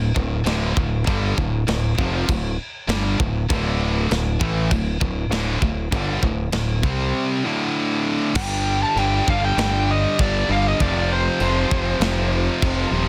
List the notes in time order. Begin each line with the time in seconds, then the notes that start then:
Already playing: D1
0.15 D1 D2 A2, kick
0.44 D1 D2 A2 D3, snare, crash
0.76 D1 D2 A2, kick
1.06 G1 G2 D3 G3, kick, crash
1.37 D1 D2 A2, kick
1.67 D1 D2 A2, snare, crash
1.98 F1 F2 C3 F3, kick
2.28 D1 D2 A2, kick, crash
2.88 G1 G2 D3 G3, snare, crash
3.18 D1 D2 A2, kick
3.49 D1 D2 A2 D3, kick, crash
4.09 D1 D2 A2, snare, crash
4.40 A1 A2 E3 A3, kick
4.71 D1 D2 A2, kick, crash
5.00 D1 D2 A2, kick
5.30 D1 D2 A2 D3, snare, crash
5.62 D1 D2 A2, kick
5.92 G1 G2 D3 G3, kick, crash
6.22 D1 D2 A2, kick
6.52 D1 D2 A2, snare, crash
6.83 C2 C3 G3 C4, kick
7.45 D2 A2 D3
8.35 G1 G2 D3 G3 G5, kick, crash, china
8.83 A5
8.96 G1 G2 D3 G3 G5, china
9.27 G1 G2 D3 G3 F5, kick
9.44 G5
9.57 G1 G2 D3 G3, snare, china
9.91 D#5
10.19 G1 G2 D3 G3 D5, kick, china
10.49 G1 G2 D3 G3 F5
10.68 D#5
10.79 F1 F2 C3 F3 D5, kick, china
11.13 C5
11.40 F1 F2 C3 F3, china
11.71 F1 F2 C3 F3, kick
12.00 F1 F2 C3 F3, snare, china
12.62 F1 F2 C3 F3, kick, china
12.91 D#1 F2 C3 F3